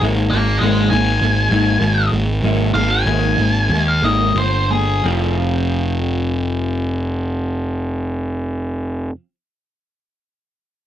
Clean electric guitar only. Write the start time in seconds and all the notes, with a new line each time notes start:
0.03 G#3 A#3 D#4
0.34 G#3 A#3
0.62 G#3 A#3 D#4
0.92 G#3 A#3
1.22 G#3 A#3
1.51 G#3 A#3 D#4
1.81 G#3 A#3
2.12 G#3 A#3
2.43 G#3 A#3 D#4
2.76 G#3 A#3
3.07 G#3 A#3 D#4
3.40 G#3 A#3
3.71 G#3 A#3
4.02 G#3 A#3 D#4
4.36 G#3 A#3
4.70 G#3 A#3
5.03 F3 C4 F4
5.07 G#4